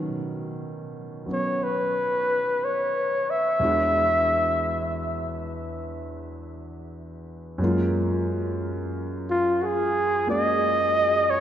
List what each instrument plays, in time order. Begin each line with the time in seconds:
Already playing: grand piano B2 D#3 F#3 C#4 C#5
1.26 grand piano F#3 B3 C#4
1.33 flugelhorn C#5
1.63 flugelhorn B4
2.64 flugelhorn C#5
3.30 flugelhorn E5
3.59 grand piano E2 E3 G#3 D4
3.64 grand piano F#4
7.58 grand piano F#2 F#3 G#3 A#3
7.64 grand piano F4
9.30 flugelhorn F4
9.61 flugelhorn F#4 G#4
10.26 grand piano G#3 A#3 C#4 F#4, flugelhorn D#5
11.30 flugelhorn C#5